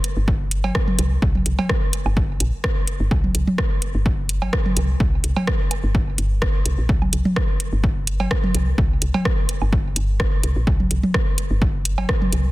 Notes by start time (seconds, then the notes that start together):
0.04 closed hi-hat
0.17 G1
0.28 kick
0.51 closed hi-hat
0.64 high tom, cowbell
0.75 kick, cross-stick, high woodblock
0.88 high tom
0.99 C2, closed hi-hat
1.22 C2, kick
1.35 high tom
1.46 C2, closed hi-hat
1.59 high tom, cowbell
1.69 kick, cross-stick
1.93 closed hi-hat
2.06 G1, high woodblock
2.17 kick
2.40 A#1, closed hi-hat
2.64 kick, cross-stick
2.87 closed hi-hat
3.00 G1
3.11 C2, kick, high woodblock
3.24 high tom
3.35 C2, closed hi-hat
3.47 high tom
3.58 kick, cross-stick
3.82 closed hi-hat
3.95 G1
4.06 kick
4.29 closed hi-hat
4.42 high tom, cowbell, high woodblock
4.53 kick, cross-stick
4.66 high tom
4.77 C2, closed hi-hat
5.00 C2, kick
5.24 C2, closed hi-hat
5.36 high tom, cowbell
5.47 kick, cross-stick
5.71 closed hi-hat, high woodblock
5.84 G1
5.95 kick
6.18 G1, closed hi-hat
6.42 kick, cross-stick
6.66 C2, closed hi-hat
6.78 A#1
6.89 C2, kick
7.02 high tom, high woodblock
7.13 C2, closed hi-hat
7.25 high tom
7.36 kick, cross-stick
7.60 closed hi-hat
7.73 G1
7.84 kick
8.07 closed hi-hat
8.20 high tom, cowbell
8.31 kick, cross-stick, high woodblock
8.44 high tom
8.55 C2, closed hi-hat
8.78 C2, kick
9.02 C2, closed hi-hat
9.14 high tom, cowbell
9.25 kick, cross-stick
9.49 closed hi-hat
9.62 G1, high woodblock
9.73 kick
9.96 G1, closed hi-hat
10.20 kick, cross-stick
10.43 C2, closed hi-hat
10.56 A#1
10.67 C2, kick, high woodblock
10.80 high tom
10.91 C2, closed hi-hat
11.03 high tom
11.14 kick, cross-stick
11.38 closed hi-hat
11.51 G1
11.62 kick
11.85 closed hi-hat
11.98 high tom, cowbell, high woodblock
12.09 kick, cross-stick
12.22 high tom
12.33 C2, closed hi-hat